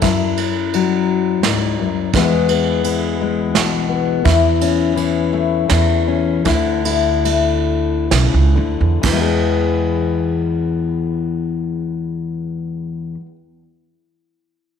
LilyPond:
<<
  \new Staff \with { instrumentName = "Steel-string acoustic guitar" } { \clef bass \time 3/4 \key e \mixolydian \tempo 4 = 78 << { e'8 cis'2~ cis'8 | <e gis b gis'>8 b4 gis4 b8 | e'8 cis'4 a4 cis'8 | e'8 e'2~ e'8 |
<e gis b gis'>2.~ | <e gis b gis'>2. | } \\ { fis,4 fis4 gis,8 fis,8 | e,4 e4 b,4 | e,4 e4 e,4 | d4 a4 cis8 d8 |
e,2.~ | e,2. | } >> }
  \new Staff \with { instrumentName = "Upright bass" } { \clef bass \time 3/4 \key e \mixolydian fis,2 cis,4 | e,2 b,,4 | e,2 e,4 | d,2 b,,16 cis,16 d,16 e,16 |
e,2.~ | e,2. | }
  \new DrumStaff \with { instrumentName = "Drums" } \drummode { \time 3/4 <bd cymr>8 cymr8 cymr4 <cymr sn>4 | <bd cymr>8 cymr8 cymr4 <cymr sn>4 | <bd cymr>8 cymr8 cymr4 <cymr sn>4 | <bd cymr>8 cymr8 cymr4 <cymr sn>4 |
<cymc bd>4 r4 r4 | r4 r4 r4 | }
>>